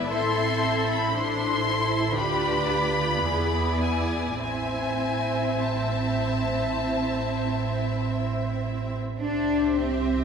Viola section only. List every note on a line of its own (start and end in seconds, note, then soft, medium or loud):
0.00 1.62 E4 soft
0.11 1.15 C4 soft
1.14 1.64 D4 soft
1.63 2.14 E4 soft
2.14 3.22 D4 soft
2.14 2.66 F4 soft
2.67 3.22 G4 soft
3.22 4.38 B3 soft
3.22 3.80 G#4 soft
3.80 4.39 E4 soft
4.40 8.96 C4 soft
4.40 8.97 E4 soft
9.21 10.24 G4 soft